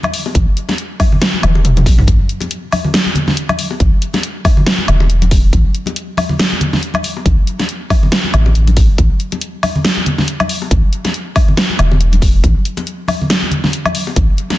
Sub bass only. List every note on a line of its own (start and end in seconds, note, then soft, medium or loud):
0.35 0.46 A1 loud
1.43 1.88 E1 medium
1.86 2.06 B1 medium
2.08 2.19 A1 loud
3.80 3.92 A1 loud
4.88 5.52 E1 loud
5.53 5.64 A1 loud
7.26 7.37 A1 loud
8.34 8.87 A1 medium
8.98 9.10 A1 loud
10.71 10.82 A1 loud
11.79 12.43 E1 loud
12.44 12.55 A1 loud
14.16 14.28 A1 loud